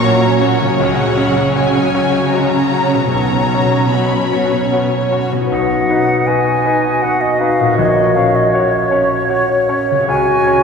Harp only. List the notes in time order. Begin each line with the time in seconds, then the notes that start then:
Already playing: A#2 C#4 F#4 C#5
0.60 C#3
0.65 C#4
0.70 F#4
0.74 C#5
2.94 B2
2.99 C#4
3.03 F#4
3.08 C#5
5.32 B2
5.37 D#4
5.41 F#4
5.46 B4
7.60 A#2
7.64 C#4
7.69 F#4
7.73 C#5
9.90 C#3
9.95 C#4
10.00 F#4
10.04 C#5